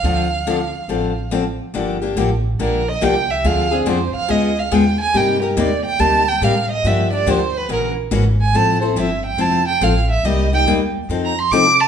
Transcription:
Already playing: F5
0.03 D2 D3 F3 C4 D4 A4
0.47 D3 F3 C4 D4 A4
0.88 A1 D3 F3 C4 D4 A4
1.31 D3 F3 C4 D4 A4
1.74 G1 D3 F3 A#3 D4 G4
2.02 A#3 D4 G4
2.16 A1 D3 F3 A#3 D4 G4
2.59 A#1 D3 F3 A#3 D4 G4 A#4
2.88 D#5
3.01 C2 D3 F3 A#3 D4 G4 G5
3.30 E5
3.44 D2 D3 F3 C4 D4 G#4 F5
3.71 C4 D4 G#4
3.86 F2 D3 F3 C4 D4 G#4 C5
4.14 F5, muted upright bass stroke
4.28 C#2 C#3 G#3 B3 F4 G#4 D#5
4.59 F5
4.71 D#2 C#3 G#3 B3 F4 G#4 G5
5.01 G#5
5.14 G2 C3 G3 A#3 D#4 G4 G5
5.42 A#3 D#4 G4 A#4
5.57 D#2 C3 G3 A#3 D#4 G4 D5
5.85 G5
5.99 D2 C3 G3 A#3 D#4 G4 A5
6.28 G5
6.41 A2 C3 G3 A#3 D#4 G4 F5
6.71 D#5
6.84 G2 D3 F3 A#3 D4 G4 E5
7.11 A#3 D4 G4 D5
7.26 D2 D3 F3 A#3 D4 G4 C5
7.57 B4
7.69 A#1 C#3 E3 A#3 C#4 F#4 A#4
8.11 G#1 C#3 E3 A#3 C#4 F#4
8.41 G#5
8.53 A1 F3 C4 E4 A4 A5
8.82 C4 E4 A4 C5
8.96 G1 F3 C4 E4 A4 E5
9.26 G5
9.38 F1 F3 C4 E4 A4 A5
9.68 G5
9.81 A1 F3 C4 E4 A4 F5
10.11 E5
10.23 C2 C3 G3 A#3 D#4 G4 D#5
10.53 A#3 D#4 G4 G5
10.66 D#2 C3 G3 A#3 D#4 G4
11.09 F2 F3 C4 D#4 A4
11.25 A#5
11.39 C6
11.51 C3 F3 C4 D#4 A4 D6
11.80 A5

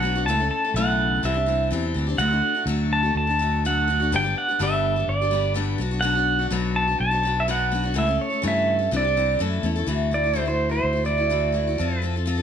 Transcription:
Already playing: B1 F#5
0.02 F#3 B3 D4
0.07 F#4
0.15 B3 D4 F#4
0.26 C#2 C#3 E3 A3 C#4 A4 A5
0.40 A3 C#4 A4
0.51 A5
0.65 A3 C#4 A4
0.74 B1 C#3 E3 A3 C#4 A4 F#5
1.23 C2 C3 E3 C4 D4 G4 E5
1.34 C4 D4 G4
1.46 E3 C4 D4 G4
1.71 E2 C3 E3 C4 D4 G4
1.94 D2 E3 C4 D4 G4
2.07 C4 D4 G4
2.18 D2 D3 F#3 A3 D4 F#4 F#5
2.31 A3 D4 F#4
2.55 A3 D4 F#4
2.66 D2 D3 F#3 A3 D4 F#4
2.93 A5
3.03 A3 D4 F#4
3.15 D2 A5
3.27 A3 D4 F#4
3.39 F#3 A3 D4 F#4
3.65 D3 F#3 A3 D4 F#4 F#5
3.88 F#3 A3 D4 F#4
4.00 D4 F#4
4.04 A3
4.12 G1 G2 D3 G3 B3 D4 G4 G5
4.23 G3 B3 D4 G4
4.38 F#5
4.48 G3 B3 D4 G4
4.59 G1 G2 D3 G3 B3 D4 G4 E5
4.96 G3 B3 D4 G4
5.08 G1 D5
5.21 G3 B3 D4 G4
5.31 G3 B3 D4 G4
5.54 G2 D3 G3 B3 D4 G4
5.78 B1 F#3 B3 D4 F#4
5.91 B3 D4 F#4
6.01 B2 F#3 B3 D4 F#4 F#5
6.15 B3 D4 F#4
6.39 B3 D4 F#4
6.50 B1 B2 F#3 B3 D4 F#4
6.76 A5
6.88 B3 D4 F#4
7.00 B1 A5
7.11 B3 D4 F#4
7.23 F#3 B3 D4 F#4
7.40 E5
7.48 B2 F#3 B3 D4 F#4 F#5
7.72 F#3 B3 D4 F#4
7.84 B3 D4 F#4
7.94 C#2 C#3 E3 A3 C#4 A4
7.98 E5
8.07 A3 C#4 A4
8.21 C#5
8.30 A3 C#4 A4
8.42 G2 C#3 E3 A3 C#4 A4
8.48 E5
8.79 A3 C#4 A4
8.91 C2 C3 E3 C4 D4 G4
8.96 D5
9.05 G4
9.09 C4
9.17 E3 C4 D4 G4
9.39 F#2 A2 E3 A3 C#4 E4 A4
9.63 E2 A3 C#4 E4 A4
9.76 A3 C#4 E4 A4
9.87 D2 D3 E3 A3 E4 F#4
10.11 E3 A3 E4 F#4 D5
10.24 A3 E4 F#4
10.33 D3 E3 A3 E4 F#4
10.38 C5
10.46 A3 E4 F#4 C5
10.69 A3 E4 F#4 C5
10.83 D2
10.93 E4 F#4
10.97 A3
11.05 E3 A3 E4 F#4 D5
11.18 A3 E4 F#4
11.30 D3 E3 A3 E4 F#4
11.52 E3 A3 E4 F#4
11.67 A3 E4 F#4
11.78 F2 F3 C4 F4 A4
12.02 F3 C4 F4 A4
12.16 C4 F4 A4
12.26 F3 C4 F4 A4
12.38 A4

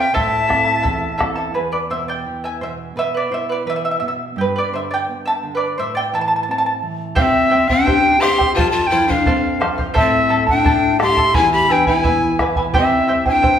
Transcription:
Already playing: C3 C5 E5 F5 G5
0.14 A2 E4 A4 C5 E5 A5, bombo low
0.47 C4 E4 A4 E5 A5, bombo rim, bombo low
0.65 E4 A4 A5
0.82 E2 E4 A4 E5 A5, bombo low
1.18 C4 E4 A4 E5 A5, bombo rim, bombo low
1.22 A4
1.36 E4 A4 A5
1.54 E2 G#4 B4
1.72 B4 D5
1.90 B2 C5 E5
2.08 D5 G5
2.26 E3
2.44 E5 G#5
2.61 B2 C5 E5
2.96 B2 B4 E5
3.14 B4 D5
3.31 E4 C5 E5
3.49 B4 D5
3.66 E3 B4
3.70 E5
3.76 E5
3.85 E5
3.91 E5
4.00 B2 E5
4.08 E5
4.36 G2 G4
4.41 B4
4.56 B4 D5
4.73 D3 C5 E5
4.91 D5 G5
5.09 B3
5.25 E5 A5
5.43 D3
5.55 B4 D5
5.78 A2 C5 E5
5.95 D5 G5
6.13 E3 E5 A5
6.21 A5
6.28 A5
6.36 A5
6.43 A5
6.49 C4 A5
6.58 A5
6.66 A5
6.83 E3
7.15 C3 C4 E4 G4 C5 E5 F5 G5, bombo low
7.22 E5
7.50 C4 E4 C5 E5 G5
7.68 D4 E4 C5 G5, bombo low
7.86 E4 G4 C5 E5 G5, bombo low
8.20 C4 E4 G4 C5 E5 G5 C6, bombo rim
8.38 E4 C5 G5, bombo low
8.54 F2 F4 A4 C5 F5 A5, bombo low
8.70 F4 A5
8.87 E4 G5
8.91 F3 A4 C5 F5
9.07 D4 C5 F5 G5, bombo low
9.26 C4 A4 C5 F5, bombo low
9.60 F3 A4 C5 F5, bombo rim
9.78 C5 F5, bombo low
9.94 A2 E4 A4 C5 E5 A5, bombo low
9.99 C4
10.29 A3 E4 A4 E5 A5
10.47 D4 E4 A4 G5 A5, bombo low
10.64 E4 A4 E5 A5, bombo low
10.99 A3 E4 G4 A4 E5 A5 C6, bombo rim
11.17 E4 A4 A5, bombo low
11.34 E2 E4 G#4 B4 E5 G#5, bombo low
11.52 G4 B5
11.69 E3 D4 E4 B4 E5 G5 G#5
11.87 E4 B4 G#5, bombo low
12.04 B3 E4 B4 E5 G#5, bombo low
12.39 E3 E4 B4 E5 G#5, bombo rim, bombo low
12.56 E4 B4 G#5, bombo low
12.74 C3 C4 E4 G4 C5 E5 G5, bombo low
12.78 E5
13.08 E4 C5 E5 G5
13.26 D4 E4 C5 G5 G#5, bombo low
13.32 G5
13.42 E4 C5 E5 G5, bombo low

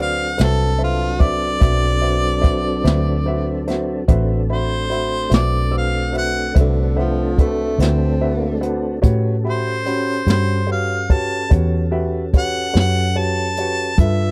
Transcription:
Already playing: D2 F#3 C4 D4 F#4 A4 B4 C5 D5
0.02 F5
0.38 C2 F#4 B4 C5 E5, snare, closed hi-hat
0.44 A4
0.78 A4 B4 C5 E5
0.84 F4
1.19 F#4 B4 C5 D5 E5, kick, closed hi-hat
1.60 B1 F#4 B4 C5 E5, kick, closed hi-hat
2.01 F#4 B4 C5 E5
2.41 F#4 B4 C5 E5, kick, closed hi-hat
2.84 D2 F#4 B4 C5 E5, snare, closed hi-hat
3.26 F#4 B4 C5 E5
3.67 F#4 B4 C5 E5, snare, closed hi-hat
4.08 A1 A3 C4 D4 F#4 A4 B4 C5 E5, kick, closed hi-hat
4.50 F#4 C5 E5 B5
4.90 F#4 C5 E5 B5, closed hi-hat
5.29 B1 F#4 B4 C5 E5, closed hi-hat
5.34 D5, snare
5.71 F#4 B4 C5 E6
5.78 F5
6.13 F#4 B4 C5 E5, closed hi-hat
6.18 F#5
6.54 C2 F#4 B4 C5 E5, kick, closed hi-hat
6.60 D3
6.96 F3 B4 C5 E5 F#5
7.38 A3 F#4 B4 C5 E5, kick, closed hi-hat
7.78 D2 C4 F#4 B4 C5 E5, snare, closed hi-hat
8.21 F#4 B4 C5 E5
8.61 F#4 B4 C5 F#5, closed hi-hat
9.02 A2 C#4 F#4 G4 A4 B4 C#5, kick, closed hi-hat
9.43 F#4 G4 E5 B5
9.50 C5
9.85 C#4 F#4 G4 B5, closed hi-hat
10.27 G2 C#4 F#4 G4 B5, snare, closed hi-hat
10.32 C5
10.67 F#4 G4 B4 C#5
10.72 F5
11.09 F#4 G4 B4 C#5 A5, kick, closed hi-hat
11.49 E2 F#4 G4 B4 C#5, kick, closed hi-hat
11.91 F#4 G4 B4 E5
12.34 F#4 G4 B4 C#5, kick, closed hi-hat
12.38 F#5
12.73 F#2 F#4 G4 B4 C#5, snare, closed hi-hat
12.80 F#5
13.16 F#4 G4 B4 C#5 A5
13.57 F#4 G4 B4 C#5, closed hi-hat
13.98 G2 D4 F4 A4 B4 E5, kick, closed hi-hat

